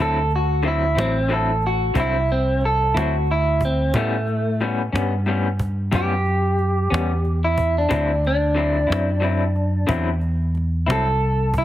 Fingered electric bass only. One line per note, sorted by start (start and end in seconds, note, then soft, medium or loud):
0.00 0.94 D2 medium
0.96 1.92 A1 medium
1.95 2.92 C2 medium
2.94 3.91 D2 medium
3.94 4.90 A2 medium
4.93 5.89 G2 medium
5.92 6.89 F#2 medium
6.91 7.88 E2 medium
7.91 8.87 D2 medium
8.90 9.86 F#2 medium
9.89 10.85 E2 medium
10.88 11.64 C2 medium